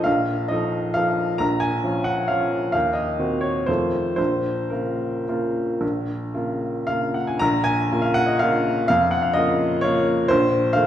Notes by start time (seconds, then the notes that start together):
0.04 A#1 F5
0.48 F3 D#4 A4 D#5
0.94 F3 D#4 A4 F5
1.38 A#1 A#5
1.60 G#5
1.84 F3 C#4 F4
2.04 F#5
2.28 F3 C#4 F4 F5
2.72 D#2 F5
2.93 D#5
3.19 D#3 C4 F#4
3.41 C#5
3.66 F2 D#3 A3 F4 C5
4.16 A#1 C5
4.70 C#3 A#3 F4 A#4
5.28 C#3 A#3 F4
5.81 A#1
6.34 C#3 A#3 F4
6.87 C#3 A#3 F4 F5
7.14 F#5
7.27 G#5
7.39 A#1 A#5
7.64 G#5
7.91 C#3 A#3 F4
8.02 F5
8.14 F#5
8.26 D#5
8.39 C#3 A#3 F4 F5
8.88 F2 F5
9.11 F#5
9.22 F5
9.33 C#3 A#3 F4 D#5
9.81 C#3 A#3 F4 C#5
10.28 A#1 C5
10.73 D#3 A3 F4 F5